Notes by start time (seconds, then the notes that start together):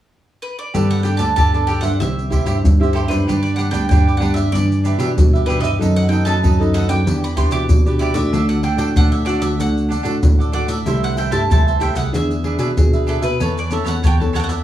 0.42 B4
0.59 D5
0.74 G2 G3 B3 D4 G4 A4 B4 D5, pandeiro, maracas, surdo
0.91 F#5, pandeiro, maracas
1.03 B3 D4 G4 A4 B4 D5 G5, pandeiro, maracas
1.17 D2 G4 A4 B4 D5 A5, pandeiro, maracas
1.36 G2 D3 G4 A4 B4 D5 A5, pandeiro, maracas, surdo
1.53 B3 D4 A4 B4 D5, pandeiro, maracas
1.67 G4 A4 B4 D5 G5, pandeiro
1.81 G2 G4 C5 E5 F#5, pandeiro, maracas
1.99 C2 C3 C4 E4 G4 E5, pandeiro, maracas, surdo
2.19 pandeiro, maracas
2.30 C4 E4 G4 C5 E5, pandeiro, maracas, surdo
2.46 G2 E4 G4 C5 E5, pandeiro, maracas
2.63 G2, pandeiro, maracas, surdo
2.79 C4 E4 G4 C5 E5, pandeiro, maracas
2.93 E4 G4 A4 C5 E5, pandeiro
3.08 F#2 G3 B3 D4 G4 B4 C5 E5, pandeiro, maracas
3.27 G2 D4 G4 B4 D5, pandeiro, maracas, surdo
3.43 D5, pandeiro, maracas
3.56 D4 G4 B4 D5 F#5, pandeiro, maracas
3.70 D2 G3 B3 D4 G4 B4 D5 G5, pandeiro, maracas
3.89 G2 D3 D4 G4 B4 G5, pandeiro, maracas, surdo
3.93 D5
4.07 G4 B4 D5, pandeiro, maracas
4.17 G3 B3 D4 G4 F#5
4.22 B4 D5, pandeiro
4.34 G2 G4 B4 E5, pandeiro, maracas
4.52 G2 E3 B3 D4 D5, pandeiro, maracas, surdo
4.72 pandeiro, maracas
4.84 D4 G4 B4 E5, pandeiro, maracas
4.98 B2 E3 B3 D4 G4 B4 E5, pandeiro, maracas
5.16 G2 B2, pandeiro, maracas, surdo
5.33 G4 B4 E5, pandeiro, maracas
5.46 E3 B3 D4 G4 B4, pandeiro, maracas
5.50 E5
5.61 G2 B4 D#5 E5, pandeiro, maracas
5.65 G4
5.79 F#2 F#3 B3 D#4 A4 B4, pandeiro, maracas, surdo
5.83 D#5
5.96 F#5, pandeiro, maracas
6.09 B3 D#4 A4 B4 G5, pandeiro
6.13 D#5
6.25 F#2 D#4 A4 B4 D#5 A5, pandeiro, maracas
6.42 F#2 F#3 D#4 A4 B4 D#5, pandeiro, maracas, surdo
6.59 B3 D#4 A4 B4 D#5, pandeiro, maracas
6.63 A4
6.74 D#4 A4 B4 D#5 F#5, pandeiro
6.88 F#2 G4 B4 D5 G5, pandeiro, maracas
7.06 E2 E3 B3 D4 G4, pandeiro, maracas, surdo
7.24 B5, pandeiro, maracas
7.36 B3 D4 E4 G4 B4 D5 C6, pandeiro, maracas, surdo
7.51 B2 E4 G4 B4 D5 D6, pandeiro, maracas
7.69 B2, pandeiro, maracas, surdo
7.85 B3 D4 G4 B4 D5, pandeiro, maracas
7.99 E4 G4 B4 D5, pandeiro
8.14 E2 A3 D4 F#4 G4 B4 D5 E5, pandeiro, maracas
8.32 D2 D3 D4 A4 D5 F#5, pandeiro, maracas, surdo
8.49 F#5, pandeiro, maracas
8.63 D4 A4 D5 F#5 G5, pandeiro
8.76 A2 A3 D4 F#4 A4 D5 F#5 G5, pandeiro, maracas
8.95 D2 A2 D4 A4 D5 F#5, pandeiro, maracas, surdo
9.11 A4 D5 E5 F#5, pandeiro, maracas
9.25 A3 D4 F#4 A4 D5 F#5, pandeiro, maracas
9.40 D2 A4 D5 E5 F#5, pandeiro, maracas
9.59 D3 A3 D4 F#4 F#5, pandeiro, maracas, surdo
9.77 pandeiro, maracas
9.89 D4 A4 D5 F#5, pandeiro, maracas
10.03 A2 A3 D4 F#4 A4 D5 F#5, pandeiro, maracas
10.23 A2, pandeiro, maracas, surdo
10.39 A4 D5 F#5, pandeiro, maracas
10.52 A3 D4 F#4 A4 D5 F#5, pandeiro
10.67 A2 A4 D5 E5 F#5, pandeiro, maracas
10.85 C2 C3 A3 E4 G4 A4 C5 E5, pandeiro, maracas, surdo
11.03 F#5, pandeiro, maracas
11.16 E4 A4 C5 E5 G5, pandeiro
11.31 G2 A3 E4 G4 A4 C5 E5 A5, pandeiro, maracas
11.49 C2 G2 E4 A4 C5 E5 A5, pandeiro, maracas, surdo
11.66 A4 C5 E5, pandeiro, maracas
11.80 A3 E4 G4 A4 C5 E5 G5, pandeiro, maracas
11.95 C2 G#4 B4 E5 F#5, pandeiro, maracas
12.12 E2 E3 B3 D4 G#4 E5, pandeiro, maracas, surdo
12.31 pandeiro, maracas
12.43 B3 D4 G#4 B4 E5, pandeiro
12.59 B2 D4 G#4 B4 E5, pandeiro, maracas
12.77 B2 B3 D4 G#4, pandeiro, maracas, surdo
12.93 G#4 B4 E5, pandeiro, maracas
13.07 D4 G#4 A4 B4 E5, pandeiro
13.22 B2 G#4 B4 E5, pandeiro, maracas
13.40 E2 E3 B3 C#4 A4 B4 C#5 A5, pandeiro, maracas, surdo
13.57 D5, pandeiro, maracas
13.70 B3 C#4 A4 B4 C#5 E5 A5, pandeiro, maracas
13.84 E2 A4 B4 C#5 F#5 A5, pandeiro, maracas
14.03 E2 E3 A4 B4 C#5 A5, pandeiro, maracas, surdo
14.07 G5
14.20 B3 C#4 A4 B4 C#5 A5, pandeiro, maracas
14.33 A4 B4 C#5 F#5 A5, pandeiro, maracas
14.40 G5
14.44 F#5
14.49 E2 A4 D5 E5 F#5, pandeiro, maracas